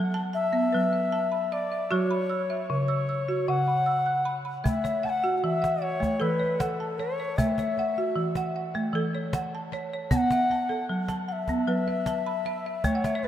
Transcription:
0.00 0.65 F#3 medium
0.00 0.15 A4 medium
0.00 0.13 A5 medium
0.14 0.32 A5 medium
0.33 1.54 E5 medium
0.33 0.93 A5 medium
0.53 0.93 B3 medium
0.73 1.79 F#3 medium
0.73 1.32 B4 medium
0.93 1.51 E5 medium
1.12 1.52 A5 medium
1.32 1.91 B5 medium
1.52 1.94 D5 medium
1.52 1.70 E5 medium
1.72 2.11 E5 medium
1.91 2.61 F#3 medium
1.91 2.30 F#4 medium
1.91 2.70 C#5 medium
1.91 2.50 C#6 medium
2.11 2.70 B5 medium
2.30 2.87 E6 medium
2.50 2.89 E5 medium
2.70 3.40 C#3 medium
2.70 3.50 C#5 medium
2.88 3.08 E6 medium
3.09 3.68 E6 medium
3.29 3.68 F#4 medium
3.48 4.53 C#3 medium
3.48 4.07 F#5 medium
3.48 4.36 F#5 medium
3.68 4.24 B5 soft
3.86 4.26 E6 medium
4.06 4.65 F#6 medium
4.25 4.44 B5 medium
4.45 4.84 B5 medium
4.64 5.04 A3 medium
4.64 5.23 E5 soft
4.64 5.07 E5 medium
4.64 cajon bass medium
4.84 5.43 C#5 medium
4.84 cajon slap soft
5.03 5.61 F#5 medium
5.03 5.10 A5 medium
5.09 5.38 F#5 medium
5.24 5.63 F#4 medium
5.38 5.45 F#5 medium
5.44 6.13 E3 medium
5.44 5.84 E5 medium
5.62 5.81 F#5 medium
5.62 cajon slap soft
5.82 6.23 C#5 medium
5.82 6.41 F#5 medium
6.00 6.40 A3 medium
6.00 cajon bass soft
6.00 cajon slap soft
6.20 7.26 E3 medium
6.20 6.79 A4 medium
6.20 6.62 B4 medium
6.40 6.98 C#5 medium
6.60 7.00 A4 medium
6.60 6.99 F#5 medium
6.60 cajon slap medium
6.80 7.39 A5 medium
6.99 7.39 C#5 medium
6.99 7.19 C#5 medium
7.20 7.58 C#5 soft
7.37 8.08 A3 medium
7.37 8.55 E5 medium
7.37 7.98 E5 medium
7.37 cajon bass medium
7.58 8.17 C#5 medium
7.58 cajon slap soft
7.79 8.36 F#5 medium
7.98 8.37 F#4 medium
8.16 8.85 E3 medium
8.35 8.55 F#5 medium
8.35 cajon slap soft
8.56 9.14 F#5 medium
8.75 9.14 A3 medium
8.75 cajon slap soft
8.93 9.98 E3 medium
8.93 9.53 A4 medium
9.15 9.72 C#5 medium
9.33 9.73 F#5 medium
9.33 cajon slap medium
9.55 10.12 A5 medium
9.73 9.92 C#5 medium
9.93 10.32 C#5 medium
10.11 10.81 B3 medium
10.11 10.70 F#5 medium
10.11 10.18 A5 medium
10.11 cajon bass medium
10.17 10.86 F#5 loud
10.30 10.90 E5 medium
10.30 cajon slap soft
10.51 11.07 A5 medium
10.69 11.09 A4 medium
10.89 11.59 F#3 medium
11.08 11.27 A5 medium
11.08 cajon slap soft
11.28 11.33 F#5 medium
11.28 11.87 A5 medium
11.32 12.86 E5 medium
11.48 11.87 B3 medium
11.48 cajon bass soft
11.48 cajon slap soft
11.67 12.72 F#3 medium
11.67 12.26 B4 medium
11.88 12.45 E5 medium
12.06 12.46 A5 medium
12.06 cajon slap soft
12.26 12.85 B5 medium
12.46 12.65 E5 medium
12.66 13.04 E5 medium
12.84 13.28 A3 medium
12.84 13.25 C#5 medium
12.84 cajon bass medium
12.84 cajon slap soft
12.95 13.13 F#5 medium
13.04 13.23 E5 medium
13.04 cajon slap soft
13.15 13.28 C#5 medium
13.24 13.28 B4 medium

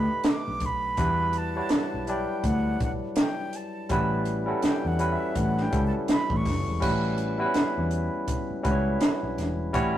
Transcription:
0.00 0.79 A3 medium
0.00 0.80 D4 medium
0.00 0.80 D#4 medium
0.00 0.80 G4 medium
0.00 0.81 B4 medium
0.00 0.30 B5 medium
0.24 snare loud
0.24 closed hi-hat loud
0.28 0.67 D6 loud
0.48 0.60 B1 medium
0.60 0.93 B1 medium
0.60 kick medium
0.60 closed hi-hat medium
0.66 1.39 B5 loud
0.97 1.60 E2 loud
0.97 1.43 G3 medium
0.97 1.43 D4 medium
0.97 1.44 E4 medium
0.97 1.44 F#4 medium
0.97 1.44 B4 loud
0.97 kick loud
0.97 closed hi-hat medium
1.33 closed hi-hat medium
1.38 2.11 A5 loud
1.56 1.99 G3 medium
1.56 1.99 D4 medium
1.56 1.99 E4 medium
1.56 2.00 F#4 medium
1.56 1.99 C#5 medium
1.69 muted fingered electric bass stroke soft
1.69 snare loud
1.69 closed hi-hat medium
1.94 2.24 B1 medium
2.07 3.28 F#3 medium
2.07 3.27 G3 medium
2.07 3.27 D4 medium
2.07 3.27 E4 medium
2.07 3.28 D5 medium
2.07 2.49 G5 medium
2.07 closed hi-hat medium
2.44 2.75 D2 medium
2.44 2.82 F#5 medium
2.44 kick medium
2.44 closed hi-hat medium
2.80 2.99 B1 medium
2.80 2.92 F#5 medium
2.80 kick loud
2.80 closed hi-hat medium
3.16 3.57 G5 medium
3.16 snare loud
3.16 closed hi-hat loud
3.53 4.28 A5 medium
3.53 closed hi-hat medium
3.89 4.52 A1 loud
3.89 4.35 G3 medium
3.89 4.35 C#4 medium
3.89 4.36 E4 medium
3.89 4.36 F#4 medium
3.89 4.36 B4 loud
3.89 kick loud
3.89 closed hi-hat medium
4.25 closed hi-hat medium
4.46 4.90 G3 medium
4.46 4.90 C#4 medium
4.46 4.91 E4 medium
4.46 4.91 F#4 medium
4.46 4.91 A4 medium
4.62 4.89 G5 medium
4.62 muted fingered electric bass stroke soft
4.62 snare loud
4.62 closed hi-hat medium
4.85 5.15 E2 medium
4.85 5.14 F#5 medium
4.99 5.61 G3 medium
4.99 5.61 C#4 medium
4.99 5.61 E4 medium
4.99 5.61 F#4 medium
4.99 5.61 B4 medium
4.99 closed hi-hat medium
5.12 5.38 E5 medium
5.35 5.67 A1 loud
5.35 5.63 F#5 medium
5.35 kick medium
5.35 closed hi-hat medium
5.57 snare soft
5.62 5.85 G5 loud
5.71 5.91 C#2 medium
5.71 6.63 G3 medium
5.71 6.63 C#4 medium
5.71 6.64 E4 medium
5.71 6.64 F#4 medium
5.71 6.64 A4 medium
5.71 kick loud
5.71 closed hi-hat medium
5.87 5.93 A5 medium
6.08 6.38 B5 loud
6.08 snare loud
6.08 closed hi-hat loud
6.30 6.43 A1 medium
6.30 kick loud
6.37 6.84 C#6 loud
6.45 6.64 F#1 medium
6.45 kick medium
6.45 snare soft
6.45 open hi-hat medium
6.68 6.80 E1 medium
6.80 7.44 A1 loud
6.80 7.27 G3 medium
6.80 7.27 C#4 medium
6.80 7.27 E4 medium
6.80 7.27 F#4 medium
6.80 7.28 B4 loud
6.80 kick loud
6.80 crash loud
7.18 closed hi-hat medium
7.38 8.41 G3 medium
7.38 7.45 B3 medium
7.38 8.42 E4 medium
7.38 8.42 F#4 medium
7.38 8.43 B4 medium
7.46 8.45 C#4 medium
7.54 muted fingered electric bass stroke soft
7.54 snare loud
7.54 closed hi-hat medium
7.78 8.08 E2 medium
7.91 closed hi-hat medium
8.28 kick loud
8.28 closed hi-hat medium
8.51 muted fingered electric bass stroke soft
8.63 8.96 C#2 medium
8.63 9.55 G3 medium
8.63 9.55 C#4 medium
8.63 9.55 E4 medium
8.63 9.55 F#4 medium
8.63 8.72 B4 medium
8.63 kick loud
8.63 closed hi-hat medium
8.71 9.59 C#5 medium
9.01 snare loud
9.01 closed hi-hat loud
9.23 9.36 B1 medium
9.38 9.74 E1 medium
9.38 snare soft
9.38 closed hi-hat medium
9.73 9.98 A1 loud
9.73 9.98 G3 loud
9.73 9.98 C#4 loud
9.73 9.98 E4 loud
9.73 9.98 F#4 loud
9.73 9.98 C#5 loud
9.73 kick loud
9.73 closed hi-hat medium

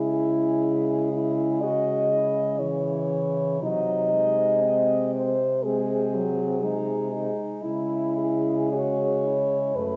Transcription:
0.00 3.58 C#3 soft
0.00 2.56 G#3 soft
0.00 1.09 E4 medium
0.00 0.13 G#4 soft
0.14 1.65 G#4 soft
1.13 1.63 E4 medium
1.62 2.11 F#4 soft
1.62 2.60 D#5 medium
2.12 2.59 E4 soft
2.59 3.64 E3 soft
2.59 3.63 E4 soft
2.59 3.62 C#5 medium
3.61 7.32 C3 soft
3.61 4.13 F#3 soft
3.61 4.64 D#4 soft
3.61 5.11 D#5 medium
4.13 5.35 G#3 soft
4.63 5.37 C4 soft
5.14 5.66 C5 medium
5.64 6.16 G#3 soft
5.64 6.59 C4 soft
5.64 7.36 G#4 medium
6.15 6.65 F#3 medium
6.62 7.63 G#3 soft
6.62 7.10 D#4 soft
7.11 7.64 D#4 soft
7.62 9.72 C#3 soft
7.62 9.79 G#3 soft
7.62 8.68 E4 medium
7.62 8.17 E4 soft
8.18 8.76 G#4 soft
8.73 9.26 F#4 soft
8.73 9.77 C#5 medium
9.25 9.96 E4 soft
9.75 9.96 F#2 soft
9.75 9.96 A3 soft
9.75 9.96 B4 medium

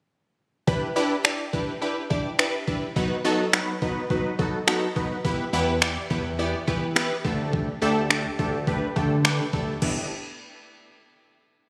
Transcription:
0.67 0.87 D4 loud
0.67 0.87 E4 medium
0.67 0.87 G4 medium
0.67 0.87 B4 loud
0.67 kick loud
0.96 1.16 D4 loud
0.96 1.16 E4 medium
0.96 1.16 G4 loud
0.96 1.16 B4 loud
1.24 1.44 D4 medium
1.24 1.44 E4 medium
1.24 1.45 G4 medium
1.24 1.45 D5 medium
1.24 finger snap loud
1.53 1.73 D4 medium
1.53 1.73 E4 medium
1.53 1.73 G4 medium
1.53 1.73 B4 medium
1.53 kick medium
1.81 2.01 D4 medium
1.81 2.02 E4 medium
1.81 2.02 G4 medium
1.81 2.02 B4 medium
2.10 2.30 D4 medium
2.10 2.30 E4 medium
2.10 2.30 G4 medium
2.10 2.30 D5 medium
2.10 kick medium
2.39 2.59 D4 loud
2.39 2.59 E4 loud
2.39 2.59 G4 loud
2.39 2.59 B4 loud
2.39 finger snap loud
2.67 2.87 D4 medium
2.67 2.87 E4 medium
2.67 2.87 G4 medium
2.67 2.88 B4 medium
2.67 kick medium
2.96 3.16 F#3 loud
2.96 3.16 B3 loud
2.96 3.16 D#4 loud
2.96 3.16 F#4 medium
2.96 3.16 B4 loud
2.96 kick loud
3.24 3.44 F#3 loud
3.24 3.44 B3 loud
3.24 3.45 D#4 loud
3.24 3.45 F#4 loud
3.24 3.45 A4 loud
3.53 3.73 F#3 medium
3.53 3.73 B3 medium
3.53 3.73 D#4 medium
3.53 3.73 F#4 medium
3.53 3.73 B4 medium
3.53 finger snap loud
3.82 4.02 F#3 medium
3.82 4.02 B3 medium
3.82 4.02 D#4 medium
3.82 4.02 F#4 medium
3.82 4.02 B4 loud
3.82 kick medium
4.10 4.30 F#3 medium
4.10 4.30 B3 medium
4.10 4.30 D#4 medium
4.10 4.30 F#4 medium
4.10 4.30 B4 medium
4.10 kick medium
4.39 4.59 F#3 medium
4.39 4.59 B3 medium
4.39 4.59 D#4 medium
4.39 4.59 F#4 medium
4.39 4.59 A4 medium
4.39 kick medium
4.67 4.87 F#3 loud
4.67 4.87 B3 loud
4.67 4.87 D#4 loud
4.67 4.87 F#4 loud
4.67 4.87 A4 loud
4.67 finger snap loud
4.96 5.16 F#3 medium
4.96 5.16 B3 medium
4.96 5.16 D#4 medium
4.96 5.16 F#4 medium
4.96 5.16 B4 loud
4.96 kick loud
5.24 5.44 B3 loud
5.24 5.44 E4 medium
5.24 5.45 G4 loud
5.24 5.45 B4 loud
5.24 kick loud
5.53 5.98 E2 medium
5.53 5.73 B3 loud
5.53 5.73 E4 loud
5.53 5.73 G4 loud
5.53 5.73 B4 loud
5.82 6.02 B3 medium
5.82 6.02 E4 medium
5.82 6.02 G4 medium
5.82 6.02 D5 medium
5.82 finger snap loud
6.10 6.55 E2 medium
6.10 6.30 B3 medium
6.10 6.30 E4 medium
6.10 6.30 G4 medium
6.10 6.30 B4 loud
6.10 kick medium
6.39 6.59 B3 medium
6.39 6.59 E4 medium
6.39 6.59 G4 medium
6.39 6.59 D5 medium
6.67 7.12 E3 medium
6.67 6.87 B3 medium
6.67 6.87 E4 medium
6.67 6.87 G4 medium
6.67 6.87 B4 medium
6.67 kick medium
6.96 7.16 B3 loud
6.96 7.16 E4 loud
6.96 7.16 G4 loud
6.96 7.16 B4 loud
6.96 finger snap loud
7.24 7.69 D2 medium
7.24 7.70 A3 medium
7.24 7.70 D4 medium
7.24 7.70 G4 medium
7.24 7.71 A4 loud
7.24 kick loud
7.53 kick loud
7.82 8.26 D2 medium
7.82 8.02 A3 loud
7.82 8.02 D4 loud
7.82 8.02 G4 loud
7.82 8.02 A4 loud
8.10 8.30 A3 medium
8.10 8.30 D4 medium
8.10 8.30 G4 medium
8.10 8.30 A4 medium
8.10 finger snap loud
8.39 8.83 D2 medium
8.39 8.59 A3 medium
8.39 8.59 D4 medium
8.39 8.59 G4 medium
8.39 8.59 A4 medium
8.39 kick medium
8.67 8.87 A3 medium
8.67 8.87 D4 medium
8.67 8.87 G4 medium
8.67 8.87 B4 medium
8.67 kick medium
8.96 9.41 D3 medium
8.96 9.16 A3 medium
8.96 9.16 D4 medium
8.96 9.16 G4 medium
8.96 9.16 A4 medium
8.96 kick medium
9.24 9.44 A3 loud
9.24 9.44 D4 loud
9.24 9.45 G4 loud
9.24 9.45 B4 loud
9.24 finger snap loud
9.53 9.75 D2 medium
9.53 9.73 A3 medium
9.53 9.73 D4 medium
9.53 9.73 G4 medium
9.53 9.73 A4 medium
9.53 kick loud
9.82 10.09 G1 loud
9.82 10.08 B3 medium
9.82 10.08 D4 medium
9.82 10.08 E4 medium
9.82 10.08 G4 medium
9.82 kick medium
9.82 crash medium

